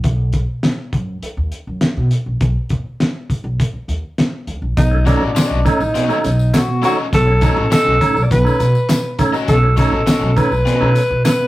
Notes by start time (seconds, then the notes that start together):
0.04 B1, kick, closed hi-hat
0.33 kick, closed hi-hat
0.63 snare, closed hi-hat
0.93 F#2, kick, closed hi-hat
1.22 muted upright bass stroke, closed hi-hat
1.37 D#2
1.52 closed hi-hat
1.67 F#2
1.81 snare, closed hi-hat
1.97 B2
2.11 closed hi-hat
2.26 A#1
2.41 B1, kick, closed hi-hat
2.69 D#2, kick, closed hi-hat
3.00 snare, closed hi-hat
3.30 muted upright bass stroke, kick, closed hi-hat
3.44 B1
3.60 kick, closed hi-hat
3.73 muted upright bass stroke
3.88 D#2, closed hi-hat
4.18 snare, closed hi-hat
4.47 D2, closed hi-hat
4.62 A#1
4.77 B1 B2 D#4, kick, closed hi-hat, tambourine
4.91 A3 C#4
5.05 D#3 A3 C#4 D4 F#4 A4 D#5, kick, closed hi-hat, tambourine
5.21 A1
5.35 C#4 F#4 A4 D#5, snare, clap, closed hi-hat, tambourine
5.51 B1
5.65 D#3 A3 C#4 D#4, kick, closed hi-hat, tambourine
5.80 A1, tambourine
5.95 B2 C#4 F#4 A4 D#5, closed hi-hat, tambourine
6.09 D#3 A3 C#4, tambourine
6.24 B1 A3 C#4 D#4, closed hi-hat, tambourine
6.39 tambourine
6.53 A3 C#4 F#4, snare, clap, closed hi-hat, tambourine
6.68 B2
6.82 D#3 A3 C#4 F#4 A4 D#5, closed hi-hat, tambourine
7.12 B1 B2 A4, kick, closed hi-hat, tambourine
7.27 A3 C#4
7.41 D#3 A3 C#4 F#4 A4 D#5, kick, closed hi-hat, tambourine
7.57 A1
7.71 C#4 F#4 A4 D#5, snare, clap, closed hi-hat, tambourine
7.86 B1
8.01 D#3 A3 C#4, kick, closed hi-hat, tambourine
8.16 B1, tambourine
8.23 D5
8.31 B1 B2 B4, kick, closed hi-hat, tambourine
8.44 D#3 A3 C#4, tambourine
8.60 B2 A3 C#4, closed hi-hat, tambourine
8.75 tambourine
8.89 snare, clap, closed hi-hat, tambourine
9.19 D#3 A3 C#4, kick, closed hi-hat, tambourine
9.33 C#4 F#4 A4 D#5, tambourine
9.48 B1 B2 A4, kick, closed hi-hat, tambourine
9.63 A3 C#4
9.77 D#3 A3 C#4 F#4 A4 D#5, kick, closed hi-hat, tambourine
9.92 A1
10.06 C#4 F#4 A4 D#5, snare, clap, closed hi-hat, tambourine
10.21 B1
10.36 D#3 A3 C#4 B4, kick, closed hi-hat, tambourine
10.51 B1, tambourine
10.65 B2 C#4 F#4 A4 D#5, muted upright bass stroke, closed hi-hat, tambourine
10.80 B2 D#3 A3 C#4
10.95 A3 C#4, closed hi-hat, tambourine
11.10 B2
11.25 A3 C#4 B4, snare, clap, closed hi-hat, tambourine
11.39 B2